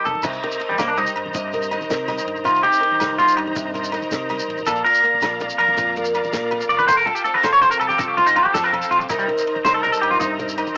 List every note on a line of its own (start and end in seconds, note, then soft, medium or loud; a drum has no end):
0.00 0.22 G3 medium
0.00 0.22 A#4 medium
0.00 0.22 D#5 soft
0.05 0.12 C2 medium
0.05 0.22 D#4 medium
0.05 0.23 A4 medium
0.05 floor tom medium
0.05 shekere soft
0.15 high conga medium
0.15 low conga medium
0.23 0.38 C2 loud
0.23 0.61 C3 medium
0.23 4.63 C5 medium
0.23 4.63 D#5 medium
0.23 0.60 D#5 medium
0.23 6.85 A#5 medium
0.23 kick medium
0.23 crash medium
0.23 muted conga loud
0.23 low agogo medium
0.23 shekere medium
0.32 shekere soft
0.43 1.37 A#4 medium
0.43 ride medium
0.43 low conga loud
0.51 shekere medium
0.60 0.98 D#5 medium
0.60 muted steel-string acoustic guitar stroke medium
0.60 ride medium
0.60 low conga soft
0.69 0.78 G3 medium
0.69 high conga medium
0.69 low conga medium
0.78 1.07 C2 loud
0.78 0.88 A#3 medium
0.78 snare medium
0.78 ride medium
0.78 muted conga medium
0.78 low agogo medium
0.78 shekere medium
0.88 0.98 D4 medium
0.97 2.07 G3 medium
0.97 1.09 D#4 medium
0.97 1.35 D#5 medium
0.97 ride soft
0.97 low conga loud
0.97 shekere soft
1.06 shekere medium
1.16 1.30 G2 medium
1.16 ride soft
1.16 low agogo medium
1.26 high conga medium
1.26 low conga medium
1.34 1.77 G2 medium
1.34 1.71 C3 medium
1.34 1.71 D#5 medium
1.34 kick medium
1.34 ride medium
1.34 muted conga medium
1.34 low conga soft
1.34 shekere medium
1.53 1.90 A#4 medium
1.53 ride soft
1.53 low conga medium
1.53 shekere soft
1.62 shekere medium
1.71 2.79 D#3 medium
1.71 2.07 D#5 medium
1.71 ride soft
1.71 low agogo medium
1.71 shekere soft
1.81 high conga medium
1.81 low conga medium
1.81 shekere soft
1.90 2.18 C3 loud
1.90 2.47 A#4 medium
1.90 snare medium
1.90 ride medium
1.90 muted conga medium
1.90 shekere medium
2.08 2.43 G3 medium
2.08 2.43 D#5 medium
2.08 snare soft
2.08 ride soft
2.08 low conga medium
2.08 low agogo medium
2.18 shekere medium
2.26 2.41 G2 medium
2.26 ride medium
2.36 low conga medium
2.36 shekere soft
2.44 2.60 C2 loud
2.44 2.82 C3 medium
2.44 2.62 D#4 medium
2.44 2.63 F4 medium
2.44 kick medium
2.44 ride medium
2.44 muted conga medium
2.44 low agogo medium
2.44 shekere medium
2.55 shekere soft
2.63 2.80 D#4 medium
2.63 3.15 G4 loud
2.63 ride medium
2.63 low conga medium
2.73 shekere medium
2.81 3.91 D#3 medium
2.81 2.99 D#4 medium
2.81 ride medium
2.81 low conga soft
2.92 high conga medium
2.92 low conga medium
3.00 3.29 C2 loud
3.00 3.18 D#4 medium
3.00 snare medium
3.00 ride medium
3.00 muted conga medium
3.00 low agogo medium
3.00 shekere medium
3.18 4.28 G3 medium
3.18 3.55 D#4 medium
3.18 3.37 F4 medium
3.18 ride medium
3.18 low conga medium
3.18 shekere soft
3.28 shekere medium
3.37 3.52 G2 medium
3.37 muted clean electric guitar stroke medium
3.37 ride medium
3.37 low agogo medium
3.48 high conga medium
3.48 low conga medium
3.55 3.98 G2 medium
3.55 3.93 C3 medium
3.55 muted steel-string acoustic guitar stroke medium
3.55 kick medium
3.55 ride medium
3.55 muted conga medium
3.55 low conga soft
3.55 shekere medium
3.74 4.11 A#4 medium
3.74 ride medium
3.74 low conga medium
3.74 shekere soft
3.84 shekere medium
3.92 4.66 D#3 medium
3.92 4.28 D#5 medium
3.92 ride medium
3.92 low agogo medium
3.92 shekere soft
4.02 high conga medium
4.02 low conga medium
4.02 shekere soft
4.11 4.39 C3 loud
4.11 4.65 A#4 medium
4.11 snare medium
4.11 ride medium
4.11 muted conga medium
4.11 shekere medium
4.29 4.64 G3 medium
4.29 4.64 D#5 medium
4.29 snare soft
4.29 ride medium
4.29 low conga medium
4.29 low agogo medium
4.39 shekere medium
4.48 4.62 A1 loud
4.48 ride soft
4.58 high conga medium
4.58 low conga medium
4.58 shekere soft
4.66 4.81 A#1 loud
4.66 5.41 A#2 medium
4.66 4.85 F4 medium
4.66 4.84 A4 medium
4.66 6.87 D5 medium
4.66 9.07 F5 medium
4.66 kick medium
4.66 ride medium
4.66 muted conga medium
4.66 low agogo medium
4.66 shekere loud
4.76 shekere soft
4.85 5.03 F4 medium
4.85 5.36 A#4 loud
4.85 ride medium
4.94 shekere medium
5.03 6.14 A#3 medium
5.03 5.22 F4 medium
5.03 ride soft
5.14 high conga medium
5.14 low conga medium
5.21 5.51 A#1 loud
5.21 5.40 F4 medium
5.21 snare medium
5.21 ride medium
5.21 muted conga medium
5.21 low agogo medium
5.21 shekere medium
5.40 5.77 F2 medium
5.40 5.77 F4 medium
5.40 ride soft
5.40 low conga medium
5.40 shekere soft
5.49 shekere medium
5.58 5.73 F2 medium
5.58 5.93 A#4 medium
5.58 ride soft
5.58 low agogo medium
5.68 high conga medium
5.68 low conga medium
5.77 6.20 F2 medium
5.77 6.51 A#2 medium
5.77 6.86 F4 medium
5.77 kick medium
5.77 ride medium
5.77 muted conga medium
5.77 low conga soft
5.77 shekere medium
5.96 6.32 A#4 medium
5.96 ride medium
5.96 low conga medium
5.96 shekere soft
6.05 shekere medium
6.14 6.86 A#3 medium
6.14 6.50 D5 medium
6.14 ride medium
6.14 low agogo medium
6.14 shekere soft
6.24 high conga medium
6.24 low conga medium
6.24 shekere soft
6.33 6.61 A#2 loud
6.33 6.86 A#4 medium
6.33 snare medium
6.33 ride medium
6.33 muted conga loud
6.33 shekere medium
6.51 6.88 F2 medium
6.51 6.86 D5 medium
6.51 ride medium
6.51 low conga medium
6.51 low agogo medium
6.61 shekere medium
6.69 6.84 G1 loud
6.69 6.78 D5 medium
6.69 ride medium
6.78 6.87 B4 medium
6.78 high conga medium
6.78 low conga medium
6.78 shekere soft
6.87 7.03 F1 loud
6.87 7.43 A4 medium
6.87 6.97 C5 loud
6.87 9.08 G5 medium
6.87 9.08 A5 medium
6.87 muted steel-string acoustic guitar stroke medium
6.87 kick medium
6.87 ride medium
6.87 muted conga medium
6.87 low conga soft
6.87 low agogo medium
6.87 shekere medium
6.97 7.06 A#4 medium
6.97 shekere soft
7.06 7.24 F4 medium
7.06 7.15 A4 loud
7.06 ride medium
7.06 low conga loud
7.15 7.24 G4 medium
7.15 shekere medium
7.24 8.18 C4 medium
7.24 7.99 F4 medium
7.24 7.34 A4 medium
7.24 ride medium
7.24 shekere soft
7.34 7.43 A#4 medium
7.34 high conga medium
7.43 7.72 F1 loud
7.43 7.62 A4 medium
7.43 7.52 C5 medium
7.43 snare medium
7.43 ride medium
7.43 muted conga medium
7.43 low agogo medium
7.43 shekere medium
7.53 7.61 C#5 loud
7.53 low conga soft
7.53 shekere soft
7.61 7.97 F2 medium
7.61 9.08 A4 medium
7.61 7.70 C5 medium
7.61 ride medium
7.61 low conga medium
7.61 shekere soft
7.71 7.79 A#4 medium
7.71 shekere medium
7.80 7.95 C2 medium
7.80 7.88 A4 medium
7.80 ride soft
7.80 low conga soft
7.80 low agogo medium
7.80 shekere soft
7.89 7.98 G4 medium
7.89 high conga medium
7.89 low conga medium
7.89 shekere soft
7.98 8.41 C2 medium
7.98 8.71 F2 medium
7.98 8.54 F4 medium
7.98 8.08 A4 medium
7.98 kick medium
7.98 ride medium
7.98 muted conga medium
7.98 shekere medium
8.08 8.17 G4 medium
8.17 8.35 C4 medium
8.17 8.26 F4 loud
8.17 ride soft
8.17 low conga loud
8.26 8.36 D#4 medium
8.26 low conga soft
8.26 shekere medium
8.36 9.10 C4 medium
8.36 8.45 F4 medium
8.36 kick medium
8.36 ride medium
8.36 low agogo medium
8.45 8.54 G4 medium
8.45 high conga medium
8.45 low conga medium
8.54 8.82 F2 loud
8.54 8.72 F4 medium
8.54 8.64 A4 loud
8.54 snare medium
8.54 ride medium
8.54 muted conga medium
8.54 shekere medium
8.64 8.72 A#4 medium
8.64 low conga soft
8.64 shekere soft
8.72 9.09 F2 medium
8.72 9.08 F4 medium
8.72 8.91 A4 medium
8.72 ride soft
8.72 low conga medium
8.72 low agogo medium
8.82 shekere medium
8.91 9.05 B1 loud
8.91 9.00 F4 medium
8.91 ride medium
8.91 shekere soft
9.00 muted clean electric guitar stroke medium
9.00 high conga medium
9.00 shekere soft
9.09 9.24 C2 loud
9.09 9.47 C3 medium
9.09 9.45 D#3 medium
9.09 9.19 D#4 medium
9.09 9.84 D#4 medium
9.09 9.28 A#4 medium
9.09 10.77 C5 medium
9.09 10.77 D#5 medium
9.09 10.20 D#5 medium
9.09 10.77 A#5 medium
9.09 kick medium
9.09 ride medium
9.09 muted conga medium
9.09 low agogo medium
9.09 shekere medium
9.19 9.24 G3 medium
9.19 shekere soft
9.28 9.66 A#4 medium
9.28 ride soft
9.28 low conga loud
9.38 shekere medium
9.46 10.56 D#3 medium
9.46 ride medium
9.46 low conga soft
9.56 high conga medium
9.56 low conga medium
9.65 9.93 C2 loud
9.65 10.39 A#4 medium
9.65 9.74 C5 medium
9.65 snare medium
9.65 ride medium
9.65 muted conga loud
9.65 low agogo medium
9.65 shekere medium
9.74 9.83 A4 medium
9.83 10.77 G3 medium
9.83 10.76 D#4 medium
9.83 9.92 A#4 loud
9.83 ride medium
9.83 low conga loud
9.83 shekere soft
9.92 10.01 A4 medium
9.92 shekere medium
10.01 10.16 G2 medium
10.01 10.11 G4 medium
10.01 ride medium
10.01 low agogo medium
10.11 10.20 F4 medium
10.11 high conga medium
10.11 low conga medium
10.20 10.63 G2 medium
10.20 10.57 C3 medium
10.20 10.31 D#4 medium
10.20 muted steel-string acoustic guitar stroke medium
10.20 kick medium
10.20 ride medium
10.20 muted conga loud
10.20 low conga soft
10.20 shekere medium
10.39 10.77 A#4 medium
10.39 ride medium
10.39 low conga loud
10.39 shekere soft
10.49 shekere medium
10.58 10.77 D#3 medium
10.58 10.77 D#5 medium
10.58 ride medium
10.58 low agogo medium
10.58 shekere soft
10.67 high conga medium
10.67 low conga medium
10.67 shekere soft